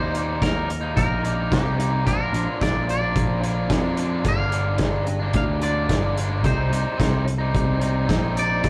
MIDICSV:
0, 0, Header, 1, 6, 480
1, 0, Start_track
1, 0, Key_signature, -2, "minor"
1, 0, Tempo, 548446
1, 1798, Time_signature, 4, 2, 24, 8
1, 7608, End_track
2, 0, Start_track
2, 0, Title_t, "Clean electric guitar"
2, 0, Program_c, 0, 27
2, 0, Note_on_c, 0, 72, 96
2, 369, Note_off_c, 0, 72, 0
2, 372, Note_on_c, 0, 70, 84
2, 812, Note_off_c, 0, 70, 0
2, 845, Note_on_c, 0, 70, 91
2, 1336, Note_off_c, 0, 70, 0
2, 1337, Note_on_c, 0, 67, 76
2, 1816, Note_on_c, 0, 70, 88
2, 1821, Note_off_c, 0, 67, 0
2, 2254, Note_off_c, 0, 70, 0
2, 2298, Note_on_c, 0, 74, 88
2, 2532, Note_off_c, 0, 74, 0
2, 2542, Note_on_c, 0, 74, 81
2, 3456, Note_off_c, 0, 74, 0
2, 3749, Note_on_c, 0, 77, 100
2, 4423, Note_off_c, 0, 77, 0
2, 4423, Note_on_c, 0, 75, 100
2, 4687, Note_off_c, 0, 75, 0
2, 4697, Note_on_c, 0, 77, 95
2, 4760, Note_off_c, 0, 77, 0
2, 4928, Note_on_c, 0, 74, 88
2, 5649, Note_off_c, 0, 74, 0
2, 5652, Note_on_c, 0, 72, 80
2, 7052, Note_off_c, 0, 72, 0
2, 7344, Note_on_c, 0, 74, 98
2, 7608, Note_off_c, 0, 74, 0
2, 7608, End_track
3, 0, Start_track
3, 0, Title_t, "Overdriven electric guitar"
3, 0, Program_c, 1, 29
3, 0, Note_on_c, 1, 51, 88
3, 5, Note_on_c, 1, 63, 77
3, 18, Note_on_c, 1, 58, 58
3, 32, Note_on_c, 1, 55, 58
3, 107, Note_off_c, 1, 51, 0
3, 118, Note_on_c, 1, 51, 73
3, 120, Note_off_c, 1, 55, 0
3, 130, Note_on_c, 1, 55, 72
3, 135, Note_off_c, 1, 63, 0
3, 136, Note_off_c, 1, 58, 0
3, 140, Note_on_c, 1, 58, 82
3, 146, Note_on_c, 1, 63, 82
3, 351, Note_off_c, 1, 51, 0
3, 361, Note_on_c, 1, 51, 97
3, 362, Note_off_c, 1, 55, 0
3, 373, Note_on_c, 1, 55, 83
3, 375, Note_off_c, 1, 58, 0
3, 375, Note_off_c, 1, 63, 0
3, 378, Note_on_c, 1, 58, 91
3, 385, Note_on_c, 1, 63, 100
3, 468, Note_off_c, 1, 63, 0
3, 479, Note_on_c, 1, 63, 71
3, 492, Note_off_c, 1, 58, 0
3, 496, Note_on_c, 1, 58, 63
3, 500, Note_off_c, 1, 55, 0
3, 511, Note_on_c, 1, 55, 56
3, 593, Note_off_c, 1, 51, 0
3, 600, Note_off_c, 1, 55, 0
3, 605, Note_off_c, 1, 58, 0
3, 605, Note_off_c, 1, 63, 0
3, 708, Note_on_c, 1, 63, 66
3, 722, Note_on_c, 1, 58, 61
3, 734, Note_on_c, 1, 55, 57
3, 1064, Note_on_c, 1, 51, 73
3, 1068, Note_off_c, 1, 55, 0
3, 1079, Note_on_c, 1, 55, 79
3, 1081, Note_off_c, 1, 58, 0
3, 1081, Note_off_c, 1, 63, 0
3, 1085, Note_on_c, 1, 58, 78
3, 1091, Note_on_c, 1, 63, 83
3, 1300, Note_off_c, 1, 51, 0
3, 1311, Note_off_c, 1, 55, 0
3, 1311, Note_on_c, 1, 51, 84
3, 1321, Note_on_c, 1, 55, 95
3, 1327, Note_off_c, 1, 58, 0
3, 1331, Note_off_c, 1, 63, 0
3, 1331, Note_on_c, 1, 58, 96
3, 1342, Note_on_c, 1, 63, 98
3, 1419, Note_off_c, 1, 63, 0
3, 1430, Note_on_c, 1, 63, 66
3, 1440, Note_off_c, 1, 58, 0
3, 1444, Note_off_c, 1, 55, 0
3, 1444, Note_on_c, 1, 58, 58
3, 1454, Note_on_c, 1, 55, 57
3, 1539, Note_off_c, 1, 51, 0
3, 1550, Note_off_c, 1, 55, 0
3, 1550, Note_on_c, 1, 51, 76
3, 1560, Note_on_c, 1, 55, 68
3, 1566, Note_off_c, 1, 63, 0
3, 1567, Note_off_c, 1, 58, 0
3, 1570, Note_on_c, 1, 58, 78
3, 1576, Note_on_c, 1, 63, 85
3, 1660, Note_off_c, 1, 63, 0
3, 1671, Note_on_c, 1, 63, 69
3, 1681, Note_off_c, 1, 58, 0
3, 1685, Note_on_c, 1, 58, 64
3, 1688, Note_off_c, 1, 55, 0
3, 1698, Note_on_c, 1, 55, 56
3, 1780, Note_off_c, 1, 51, 0
3, 1780, Note_off_c, 1, 63, 0
3, 1787, Note_on_c, 1, 46, 82
3, 1793, Note_on_c, 1, 50, 84
3, 1794, Note_off_c, 1, 55, 0
3, 1798, Note_on_c, 1, 53, 88
3, 1805, Note_off_c, 1, 58, 0
3, 1809, Note_on_c, 1, 58, 89
3, 1811, Note_on_c, 1, 62, 99
3, 1913, Note_off_c, 1, 62, 0
3, 1917, Note_on_c, 1, 62, 73
3, 1929, Note_off_c, 1, 58, 0
3, 1933, Note_on_c, 1, 58, 64
3, 1942, Note_off_c, 1, 53, 0
3, 1946, Note_on_c, 1, 53, 58
3, 2026, Note_off_c, 1, 50, 0
3, 2036, Note_on_c, 1, 50, 76
3, 2045, Note_off_c, 1, 53, 0
3, 2048, Note_on_c, 1, 53, 81
3, 2053, Note_off_c, 1, 58, 0
3, 2057, Note_on_c, 1, 58, 74
3, 2063, Note_off_c, 1, 62, 0
3, 2066, Note_on_c, 1, 62, 81
3, 2153, Note_off_c, 1, 46, 0
3, 2269, Note_on_c, 1, 46, 96
3, 2272, Note_off_c, 1, 50, 0
3, 2282, Note_on_c, 1, 50, 88
3, 2287, Note_off_c, 1, 53, 0
3, 2287, Note_off_c, 1, 58, 0
3, 2290, Note_on_c, 1, 53, 101
3, 2291, Note_on_c, 1, 58, 103
3, 2298, Note_off_c, 1, 62, 0
3, 2301, Note_on_c, 1, 62, 105
3, 2387, Note_off_c, 1, 62, 0
3, 2390, Note_on_c, 1, 62, 65
3, 2409, Note_off_c, 1, 58, 0
3, 2412, Note_on_c, 1, 58, 60
3, 2418, Note_off_c, 1, 53, 0
3, 2421, Note_on_c, 1, 53, 51
3, 2507, Note_off_c, 1, 50, 0
3, 2516, Note_off_c, 1, 53, 0
3, 2517, Note_off_c, 1, 58, 0
3, 2519, Note_off_c, 1, 62, 0
3, 2634, Note_off_c, 1, 46, 0
3, 2637, Note_on_c, 1, 62, 68
3, 2650, Note_on_c, 1, 58, 58
3, 2670, Note_on_c, 1, 53, 57
3, 2983, Note_on_c, 1, 50, 70
3, 2984, Note_off_c, 1, 53, 0
3, 2994, Note_off_c, 1, 58, 0
3, 2995, Note_on_c, 1, 53, 85
3, 3005, Note_on_c, 1, 58, 74
3, 3008, Note_off_c, 1, 62, 0
3, 3019, Note_on_c, 1, 62, 79
3, 3228, Note_off_c, 1, 50, 0
3, 3229, Note_on_c, 1, 46, 86
3, 3235, Note_off_c, 1, 53, 0
3, 3238, Note_on_c, 1, 50, 85
3, 3241, Note_off_c, 1, 58, 0
3, 3246, Note_on_c, 1, 53, 92
3, 3247, Note_off_c, 1, 62, 0
3, 3252, Note_on_c, 1, 58, 91
3, 3258, Note_on_c, 1, 62, 101
3, 3346, Note_off_c, 1, 62, 0
3, 3356, Note_on_c, 1, 62, 70
3, 3358, Note_off_c, 1, 58, 0
3, 3368, Note_on_c, 1, 58, 63
3, 3375, Note_off_c, 1, 53, 0
3, 3386, Note_on_c, 1, 53, 52
3, 3453, Note_off_c, 1, 50, 0
3, 3463, Note_on_c, 1, 50, 73
3, 3473, Note_off_c, 1, 53, 0
3, 3475, Note_off_c, 1, 58, 0
3, 3483, Note_on_c, 1, 53, 72
3, 3486, Note_on_c, 1, 58, 79
3, 3487, Note_off_c, 1, 62, 0
3, 3497, Note_on_c, 1, 62, 73
3, 3570, Note_off_c, 1, 62, 0
3, 3581, Note_on_c, 1, 62, 68
3, 3594, Note_off_c, 1, 46, 0
3, 3595, Note_off_c, 1, 58, 0
3, 3603, Note_off_c, 1, 53, 0
3, 3605, Note_on_c, 1, 58, 62
3, 3614, Note_on_c, 1, 53, 56
3, 3695, Note_off_c, 1, 50, 0
3, 3695, Note_off_c, 1, 62, 0
3, 3695, Note_on_c, 1, 43, 88
3, 3705, Note_on_c, 1, 50, 93
3, 3708, Note_off_c, 1, 58, 0
3, 3710, Note_off_c, 1, 53, 0
3, 3714, Note_on_c, 1, 55, 88
3, 3718, Note_on_c, 1, 58, 89
3, 3729, Note_on_c, 1, 62, 94
3, 3807, Note_off_c, 1, 62, 0
3, 3817, Note_on_c, 1, 62, 73
3, 3825, Note_off_c, 1, 58, 0
3, 3836, Note_on_c, 1, 58, 58
3, 3847, Note_off_c, 1, 55, 0
3, 3850, Note_on_c, 1, 55, 53
3, 3929, Note_off_c, 1, 50, 0
3, 3939, Note_on_c, 1, 50, 70
3, 3944, Note_off_c, 1, 55, 0
3, 3944, Note_off_c, 1, 58, 0
3, 3948, Note_on_c, 1, 55, 72
3, 3955, Note_off_c, 1, 62, 0
3, 3955, Note_on_c, 1, 58, 77
3, 3966, Note_on_c, 1, 62, 80
3, 4067, Note_off_c, 1, 43, 0
3, 4166, Note_off_c, 1, 50, 0
3, 4173, Note_on_c, 1, 43, 89
3, 4177, Note_on_c, 1, 50, 90
3, 4185, Note_off_c, 1, 58, 0
3, 4187, Note_off_c, 1, 55, 0
3, 4188, Note_off_c, 1, 62, 0
3, 4191, Note_on_c, 1, 55, 90
3, 4195, Note_on_c, 1, 58, 100
3, 4199, Note_on_c, 1, 62, 101
3, 4290, Note_off_c, 1, 62, 0
3, 4300, Note_on_c, 1, 62, 69
3, 4307, Note_off_c, 1, 58, 0
3, 4317, Note_on_c, 1, 58, 57
3, 4326, Note_off_c, 1, 55, 0
3, 4329, Note_on_c, 1, 55, 57
3, 4421, Note_off_c, 1, 50, 0
3, 4425, Note_off_c, 1, 58, 0
3, 4430, Note_off_c, 1, 55, 0
3, 4430, Note_off_c, 1, 62, 0
3, 4547, Note_off_c, 1, 43, 0
3, 4547, Note_on_c, 1, 62, 67
3, 4563, Note_on_c, 1, 58, 62
3, 4575, Note_on_c, 1, 55, 55
3, 4912, Note_on_c, 1, 50, 79
3, 4923, Note_off_c, 1, 55, 0
3, 4925, Note_off_c, 1, 58, 0
3, 4926, Note_on_c, 1, 55, 69
3, 4932, Note_off_c, 1, 62, 0
3, 4936, Note_on_c, 1, 58, 80
3, 4943, Note_on_c, 1, 62, 81
3, 5155, Note_off_c, 1, 50, 0
3, 5155, Note_on_c, 1, 43, 85
3, 5165, Note_on_c, 1, 50, 88
3, 5168, Note_off_c, 1, 55, 0
3, 5168, Note_off_c, 1, 58, 0
3, 5171, Note_off_c, 1, 62, 0
3, 5171, Note_on_c, 1, 55, 93
3, 5178, Note_on_c, 1, 58, 93
3, 5182, Note_on_c, 1, 62, 96
3, 5271, Note_off_c, 1, 62, 0
3, 5282, Note_on_c, 1, 62, 70
3, 5287, Note_off_c, 1, 58, 0
3, 5298, Note_on_c, 1, 58, 63
3, 5303, Note_off_c, 1, 55, 0
3, 5307, Note_on_c, 1, 55, 51
3, 5381, Note_off_c, 1, 50, 0
3, 5391, Note_on_c, 1, 50, 68
3, 5401, Note_off_c, 1, 55, 0
3, 5403, Note_off_c, 1, 58, 0
3, 5404, Note_on_c, 1, 55, 67
3, 5409, Note_off_c, 1, 62, 0
3, 5414, Note_on_c, 1, 58, 76
3, 5420, Note_on_c, 1, 62, 78
3, 5497, Note_off_c, 1, 62, 0
3, 5508, Note_on_c, 1, 62, 73
3, 5516, Note_off_c, 1, 58, 0
3, 5518, Note_off_c, 1, 43, 0
3, 5527, Note_on_c, 1, 58, 62
3, 5536, Note_off_c, 1, 55, 0
3, 5540, Note_on_c, 1, 55, 52
3, 5620, Note_off_c, 1, 62, 0
3, 5621, Note_off_c, 1, 50, 0
3, 5629, Note_off_c, 1, 58, 0
3, 5629, Note_on_c, 1, 48, 89
3, 5640, Note_off_c, 1, 55, 0
3, 5643, Note_on_c, 1, 55, 90
3, 5652, Note_on_c, 1, 60, 85
3, 5659, Note_on_c, 1, 63, 100
3, 5740, Note_off_c, 1, 63, 0
3, 5743, Note_on_c, 1, 63, 74
3, 5750, Note_off_c, 1, 60, 0
3, 5760, Note_on_c, 1, 60, 64
3, 5772, Note_off_c, 1, 55, 0
3, 5776, Note_on_c, 1, 55, 58
3, 5846, Note_off_c, 1, 48, 0
3, 5857, Note_on_c, 1, 48, 72
3, 5866, Note_off_c, 1, 55, 0
3, 5868, Note_off_c, 1, 60, 0
3, 5869, Note_on_c, 1, 55, 75
3, 5878, Note_on_c, 1, 60, 77
3, 5886, Note_off_c, 1, 63, 0
3, 5889, Note_on_c, 1, 63, 89
3, 6078, Note_off_c, 1, 48, 0
3, 6089, Note_on_c, 1, 48, 88
3, 6096, Note_off_c, 1, 60, 0
3, 6100, Note_off_c, 1, 55, 0
3, 6103, Note_on_c, 1, 55, 93
3, 6106, Note_on_c, 1, 60, 89
3, 6118, Note_off_c, 1, 63, 0
3, 6121, Note_on_c, 1, 63, 100
3, 6214, Note_off_c, 1, 63, 0
3, 6217, Note_on_c, 1, 63, 68
3, 6230, Note_off_c, 1, 60, 0
3, 6241, Note_on_c, 1, 60, 64
3, 6245, Note_off_c, 1, 55, 0
3, 6248, Note_on_c, 1, 55, 59
3, 6332, Note_off_c, 1, 48, 0
3, 6336, Note_off_c, 1, 60, 0
3, 6346, Note_off_c, 1, 55, 0
3, 6350, Note_off_c, 1, 63, 0
3, 6463, Note_on_c, 1, 63, 70
3, 6478, Note_on_c, 1, 60, 66
3, 6486, Note_on_c, 1, 55, 59
3, 6821, Note_off_c, 1, 55, 0
3, 6822, Note_on_c, 1, 48, 78
3, 6831, Note_on_c, 1, 55, 74
3, 6833, Note_off_c, 1, 60, 0
3, 6840, Note_off_c, 1, 63, 0
3, 6843, Note_on_c, 1, 60, 77
3, 6851, Note_on_c, 1, 63, 80
3, 7051, Note_off_c, 1, 48, 0
3, 7059, Note_off_c, 1, 55, 0
3, 7061, Note_on_c, 1, 48, 86
3, 7069, Note_on_c, 1, 55, 92
3, 7073, Note_off_c, 1, 60, 0
3, 7079, Note_off_c, 1, 63, 0
3, 7083, Note_on_c, 1, 60, 96
3, 7089, Note_on_c, 1, 63, 92
3, 7185, Note_off_c, 1, 63, 0
3, 7195, Note_on_c, 1, 63, 70
3, 7200, Note_off_c, 1, 60, 0
3, 7208, Note_off_c, 1, 55, 0
3, 7211, Note_on_c, 1, 60, 66
3, 7219, Note_on_c, 1, 55, 59
3, 7287, Note_off_c, 1, 48, 0
3, 7297, Note_on_c, 1, 48, 73
3, 7301, Note_off_c, 1, 55, 0
3, 7309, Note_off_c, 1, 60, 0
3, 7311, Note_on_c, 1, 55, 70
3, 7315, Note_off_c, 1, 63, 0
3, 7320, Note_on_c, 1, 60, 81
3, 7326, Note_on_c, 1, 63, 87
3, 7422, Note_off_c, 1, 63, 0
3, 7432, Note_on_c, 1, 63, 64
3, 7436, Note_off_c, 1, 60, 0
3, 7447, Note_on_c, 1, 60, 57
3, 7449, Note_off_c, 1, 55, 0
3, 7460, Note_on_c, 1, 55, 58
3, 7535, Note_off_c, 1, 48, 0
3, 7542, Note_off_c, 1, 63, 0
3, 7549, Note_off_c, 1, 60, 0
3, 7551, Note_off_c, 1, 55, 0
3, 7552, Note_on_c, 1, 51, 97
3, 7562, Note_on_c, 1, 55, 88
3, 7571, Note_on_c, 1, 58, 96
3, 7576, Note_on_c, 1, 63, 101
3, 7608, Note_off_c, 1, 51, 0
3, 7608, Note_off_c, 1, 55, 0
3, 7608, Note_off_c, 1, 58, 0
3, 7608, Note_off_c, 1, 63, 0
3, 7608, End_track
4, 0, Start_track
4, 0, Title_t, "Picked electric bass"
4, 0, Program_c, 2, 34
4, 0, Note_on_c, 2, 39, 91
4, 334, Note_off_c, 2, 39, 0
4, 365, Note_on_c, 2, 39, 85
4, 815, Note_off_c, 2, 39, 0
4, 847, Note_on_c, 2, 34, 92
4, 1296, Note_off_c, 2, 34, 0
4, 1332, Note_on_c, 2, 36, 79
4, 1807, Note_off_c, 2, 36, 0
4, 1807, Note_on_c, 2, 34, 90
4, 2029, Note_off_c, 2, 34, 0
4, 2038, Note_on_c, 2, 34, 77
4, 2152, Note_off_c, 2, 34, 0
4, 2284, Note_on_c, 2, 34, 81
4, 2734, Note_off_c, 2, 34, 0
4, 2768, Note_on_c, 2, 34, 93
4, 3216, Note_off_c, 2, 34, 0
4, 3240, Note_on_c, 2, 41, 77
4, 3692, Note_off_c, 2, 41, 0
4, 3720, Note_on_c, 2, 31, 88
4, 4173, Note_off_c, 2, 31, 0
4, 4194, Note_on_c, 2, 31, 82
4, 4650, Note_off_c, 2, 31, 0
4, 4676, Note_on_c, 2, 38, 90
4, 5131, Note_off_c, 2, 38, 0
4, 5159, Note_on_c, 2, 31, 77
4, 5636, Note_off_c, 2, 31, 0
4, 5636, Note_on_c, 2, 36, 93
4, 5858, Note_off_c, 2, 36, 0
4, 5863, Note_on_c, 2, 36, 77
4, 5984, Note_off_c, 2, 36, 0
4, 6123, Note_on_c, 2, 36, 84
4, 6575, Note_off_c, 2, 36, 0
4, 6603, Note_on_c, 2, 36, 99
4, 7055, Note_off_c, 2, 36, 0
4, 7085, Note_on_c, 2, 34, 83
4, 7536, Note_off_c, 2, 34, 0
4, 7558, Note_on_c, 2, 39, 90
4, 7608, Note_off_c, 2, 39, 0
4, 7608, End_track
5, 0, Start_track
5, 0, Title_t, "Muted overdriven electric guitar strokes"
5, 604, Note_on_c, 9, 29, 43
5, 691, Note_off_c, 9, 29, 0
5, 2517, Note_on_c, 9, 29, 48
5, 2605, Note_off_c, 9, 29, 0
5, 4431, Note_on_c, 9, 29, 42
5, 4519, Note_off_c, 9, 29, 0
5, 6342, Note_on_c, 9, 29, 46
5, 6430, Note_off_c, 9, 29, 0
5, 7608, End_track
6, 0, Start_track
6, 0, Title_t, "Drums"
6, 128, Note_on_c, 9, 42, 55
6, 216, Note_off_c, 9, 42, 0
6, 367, Note_on_c, 9, 36, 105
6, 372, Note_on_c, 9, 42, 79
6, 381, Note_on_c, 9, 38, 110
6, 455, Note_off_c, 9, 36, 0
6, 459, Note_off_c, 9, 42, 0
6, 469, Note_off_c, 9, 38, 0
6, 613, Note_on_c, 9, 42, 59
6, 701, Note_off_c, 9, 42, 0
6, 849, Note_on_c, 9, 36, 103
6, 852, Note_on_c, 9, 42, 78
6, 936, Note_off_c, 9, 36, 0
6, 939, Note_off_c, 9, 42, 0
6, 1091, Note_on_c, 9, 42, 60
6, 1179, Note_off_c, 9, 42, 0
6, 1329, Note_on_c, 9, 36, 98
6, 1332, Note_on_c, 9, 42, 76
6, 1342, Note_on_c, 9, 38, 99
6, 1416, Note_off_c, 9, 36, 0
6, 1420, Note_off_c, 9, 42, 0
6, 1429, Note_off_c, 9, 38, 0
6, 1573, Note_on_c, 9, 42, 70
6, 1661, Note_off_c, 9, 42, 0
6, 1810, Note_on_c, 9, 36, 92
6, 1814, Note_on_c, 9, 42, 78
6, 1897, Note_off_c, 9, 36, 0
6, 1902, Note_off_c, 9, 42, 0
6, 2049, Note_on_c, 9, 42, 60
6, 2137, Note_off_c, 9, 42, 0
6, 2288, Note_on_c, 9, 36, 106
6, 2296, Note_on_c, 9, 42, 84
6, 2305, Note_on_c, 9, 38, 111
6, 2376, Note_off_c, 9, 36, 0
6, 2383, Note_off_c, 9, 42, 0
6, 2393, Note_off_c, 9, 38, 0
6, 2532, Note_on_c, 9, 42, 61
6, 2619, Note_off_c, 9, 42, 0
6, 2763, Note_on_c, 9, 36, 106
6, 2764, Note_on_c, 9, 42, 78
6, 2851, Note_off_c, 9, 36, 0
6, 2852, Note_off_c, 9, 42, 0
6, 3006, Note_on_c, 9, 42, 58
6, 3094, Note_off_c, 9, 42, 0
6, 3237, Note_on_c, 9, 42, 69
6, 3238, Note_on_c, 9, 36, 100
6, 3247, Note_on_c, 9, 38, 103
6, 3324, Note_off_c, 9, 42, 0
6, 3325, Note_off_c, 9, 36, 0
6, 3334, Note_off_c, 9, 38, 0
6, 3476, Note_on_c, 9, 42, 63
6, 3564, Note_off_c, 9, 42, 0
6, 3716, Note_on_c, 9, 42, 72
6, 3718, Note_on_c, 9, 36, 99
6, 3804, Note_off_c, 9, 42, 0
6, 3805, Note_off_c, 9, 36, 0
6, 3957, Note_on_c, 9, 42, 52
6, 4044, Note_off_c, 9, 42, 0
6, 4185, Note_on_c, 9, 42, 74
6, 4194, Note_on_c, 9, 36, 109
6, 4195, Note_on_c, 9, 38, 107
6, 4273, Note_off_c, 9, 42, 0
6, 4281, Note_off_c, 9, 36, 0
6, 4282, Note_off_c, 9, 38, 0
6, 4435, Note_on_c, 9, 42, 56
6, 4522, Note_off_c, 9, 42, 0
6, 4668, Note_on_c, 9, 42, 78
6, 4675, Note_on_c, 9, 36, 107
6, 4756, Note_off_c, 9, 42, 0
6, 4762, Note_off_c, 9, 36, 0
6, 4915, Note_on_c, 9, 42, 59
6, 5002, Note_off_c, 9, 42, 0
6, 5157, Note_on_c, 9, 42, 76
6, 5158, Note_on_c, 9, 36, 103
6, 5167, Note_on_c, 9, 38, 97
6, 5245, Note_off_c, 9, 42, 0
6, 5246, Note_off_c, 9, 36, 0
6, 5254, Note_off_c, 9, 38, 0
6, 5404, Note_on_c, 9, 42, 67
6, 5492, Note_off_c, 9, 42, 0
6, 5638, Note_on_c, 9, 36, 98
6, 5640, Note_on_c, 9, 42, 77
6, 5726, Note_off_c, 9, 36, 0
6, 5728, Note_off_c, 9, 42, 0
6, 5888, Note_on_c, 9, 42, 66
6, 5975, Note_off_c, 9, 42, 0
6, 6124, Note_on_c, 9, 36, 105
6, 6130, Note_on_c, 9, 42, 85
6, 6140, Note_on_c, 9, 38, 101
6, 6211, Note_off_c, 9, 36, 0
6, 6217, Note_off_c, 9, 42, 0
6, 6227, Note_off_c, 9, 38, 0
6, 6368, Note_on_c, 9, 42, 58
6, 6456, Note_off_c, 9, 42, 0
6, 6604, Note_on_c, 9, 36, 109
6, 6611, Note_on_c, 9, 42, 83
6, 6692, Note_off_c, 9, 36, 0
6, 6699, Note_off_c, 9, 42, 0
6, 6838, Note_on_c, 9, 42, 63
6, 6926, Note_off_c, 9, 42, 0
6, 7082, Note_on_c, 9, 36, 103
6, 7086, Note_on_c, 9, 42, 76
6, 7096, Note_on_c, 9, 38, 104
6, 7169, Note_off_c, 9, 36, 0
6, 7174, Note_off_c, 9, 42, 0
6, 7184, Note_off_c, 9, 38, 0
6, 7325, Note_on_c, 9, 42, 64
6, 7413, Note_off_c, 9, 42, 0
6, 7559, Note_on_c, 9, 42, 77
6, 7562, Note_on_c, 9, 36, 99
6, 7608, Note_off_c, 9, 36, 0
6, 7608, Note_off_c, 9, 42, 0
6, 7608, End_track
0, 0, End_of_file